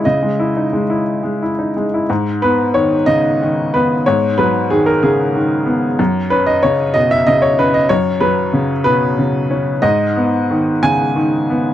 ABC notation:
X:1
M:6/8
L:1/16
Q:3/8=62
K:G#m
V:1 name="Upright piano"
d8- d2 z2 | z2 B2 c2 d4 B2 | c2 B2 G A G6 | z2 B d c2 d e d c B d |
c2 B4 B6 | d6 g6 |]
V:2 name="Upright piano" clef=bass
[C,E] G, E D G, E2 G, E D G, E | G,,2 B,2 D,2 C,2 D,2 B,2 | G,,2 F,2 D,2 C,2 D,2 B,2 | F,,2 C2 C,2 B,,2 C,2 C2 |
F,,2 F,2 C,2 B,,2 C,2 C2 | G,,2 B,2 D,2 C,2 D,2 B,2 |]